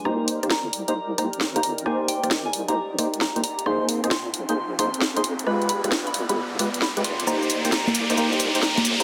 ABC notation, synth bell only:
X:1
M:4/4
L:1/16
Q:"Swing 16ths" 1/4=133
K:Cm
V:1 name="Synth bell"
b2 z2 b z2 b z2 b z2 b z2 | a z g z2 a z b z4 b z b z | c'2 z2 c' z2 c' z2 c' z2 c' z2 | =b z b z2 b z b z4 b z c' z |
b2 z2 b z2 b b2 z2 b z2 b |]